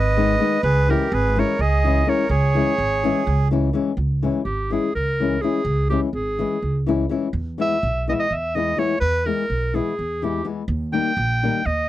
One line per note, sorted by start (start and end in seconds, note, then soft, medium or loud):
0.00 0.36 G#1 loud
0.00 0.64 B4 medium
0.00 0.63 D#5 loud
0.17 0.34 D#3 medium
0.17 0.34 G#3 medium
0.17 0.35 B3 medium
0.17 0.35 D#4 medium
0.39 0.56 D#3 medium
0.39 0.57 G#3 medium
0.39 0.57 B3 medium
0.39 0.58 D#4 medium
0.63 0.92 C#2 loud
0.63 0.88 G#4 medium
0.63 0.91 B4 loud
0.89 1.06 E3 medium
0.89 1.06 G#3 medium
0.89 1.06 C#4 medium
0.89 1.07 E4 medium
0.89 1.12 G4 medium
0.89 1.15 A#4 medium
1.12 1.41 G#1 loud
1.12 1.38 G#4 medium
1.12 1.41 B4 medium
1.36 1.54 E3 medium
1.36 1.54 G#3 medium
1.36 1.54 C#4 medium
1.36 1.55 E4 medium
1.36 1.61 A#4 medium
1.36 1.62 C#5 medium
1.59 2.01 C#2 medium
1.59 2.07 G#4 medium
1.59 2.10 D#5 medium
1.84 2.01 E3 medium
1.84 2.02 G#3 medium
1.84 2.02 C#4 medium
1.84 2.02 E4 medium
2.06 2.23 E3 medium
2.06 2.24 G#3 medium
2.06 2.24 C#4 medium
2.06 2.24 E4 medium
2.06 2.30 A#4 medium
2.06 2.30 C#5 medium
2.29 2.59 C#2 loud
2.29 3.48 G#4 medium
2.29 3.48 C#5 loud
2.55 2.72 E3 medium
2.55 2.73 G#3 medium
2.55 2.73 C#4 medium
2.55 2.73 E4 medium
2.78 3.08 G#1 medium
3.04 3.21 E3 medium
3.04 3.21 G#3 medium
3.04 3.21 C#4 medium
3.04 3.22 E4 medium
3.27 3.69 C#2 loud
3.51 3.68 E3 medium
3.51 3.69 G#3 medium
3.51 3.69 C#4 medium
3.51 3.69 E4 medium
3.73 3.91 E3 medium
3.73 3.91 G#3 medium
3.73 3.91 C#4 medium
3.73 3.92 E4 medium
3.97 4.26 C#2 medium
4.23 4.40 E3 medium
4.23 4.40 G#3 medium
4.23 4.40 C#4 medium
4.23 4.41 E4 medium
4.45 4.75 G#1 medium
4.45 4.74 G4 medium
4.70 4.88 E3 medium
4.70 4.89 G#3 medium
4.70 4.89 C#4 soft
4.70 4.89 E4 medium
4.70 4.95 G#4 medium
4.95 5.37 C#2 medium
4.95 5.43 A#4 medium
5.20 5.37 E3 medium
5.20 5.37 G#3 medium
5.20 5.37 C#4 medium
5.20 5.38 E4 medium
5.42 5.59 E3 medium
5.42 5.59 G#3 medium
5.42 5.60 C#4 medium
5.42 5.60 E4 medium
5.42 5.89 G#4 medium
5.65 5.94 C#2 medium
5.90 6.07 E3 medium
5.90 6.08 G#3 medium
5.90 6.08 C#4 medium
5.90 6.09 E4 medium
5.90 6.00 G4 medium
6.13 6.43 G#1 medium
6.13 6.83 G#4 medium
6.39 6.56 E3 medium
6.39 6.57 G#3 medium
6.39 6.57 C#4 medium
6.39 6.57 E4 medium
6.62 7.05 C#2 medium
6.87 7.04 E3 medium
6.87 7.04 G#3 medium
6.87 7.05 C#4 medium
6.87 7.05 E4 medium
7.09 7.27 E3 medium
7.09 7.27 G#3 medium
7.09 7.27 C#4 medium
7.09 7.27 E4 medium
7.33 7.62 E2 loud
7.58 7.75 E3 medium
7.58 7.76 G#3 medium
7.58 7.76 B3 medium
7.58 7.76 E4 medium
7.58 8.06 E5 medium
7.83 8.12 B1 medium
8.08 8.25 E3 medium
8.08 8.25 G#3 medium
8.08 8.25 B3 medium
8.08 8.26 E4 medium
8.08 8.13 D#5 medium
8.08 8.21 E5 medium
8.19 8.33 D#5 loud
8.31 8.73 E2 medium
8.31 8.57 E5 medium
8.55 8.72 E3 medium
8.55 8.72 G#3 medium
8.55 8.73 B3 medium
8.55 8.73 E4 medium
8.55 8.80 D#5 medium
8.77 8.94 E3 medium
8.77 8.94 G#3 medium
8.77 8.95 B3 medium
8.77 8.95 E4 medium
8.77 9.00 C#5 medium
9.00 9.30 E2 medium
9.00 9.27 B4 loud
9.26 9.43 E3 medium
9.26 9.43 G#3 medium
9.26 9.44 B3 medium
9.26 9.44 E4 medium
9.26 9.77 A#4 medium
9.50 9.79 B1 medium
9.74 9.92 E3 medium
9.74 9.92 G#3 medium
9.74 9.92 B3 medium
9.74 9.92 E4 medium
9.74 10.25 G#4 medium
9.99 10.41 E2 medium
10.22 10.39 E3 medium
10.22 10.39 G#3 medium
10.22 10.40 B3 medium
10.22 10.40 E4 medium
10.22 10.46 G4 medium
10.45 10.62 E3 medium
10.45 10.62 G#3 medium
10.45 10.62 B3 medium
10.45 10.62 E4 medium
10.68 10.97 D#2 loud
10.92 11.10 D#3 medium
10.92 11.11 G3 medium
10.92 11.11 A#3 medium
10.92 11.11 D#4 medium
10.92 11.68 G5 loud
11.17 11.46 A#1 loud
11.43 11.60 D#3 medium
11.43 11.60 G3 medium
11.43 11.60 A#3 medium
11.43 11.61 D#4 medium
11.66 11.89 D#2 medium
11.66 11.89 D#5 medium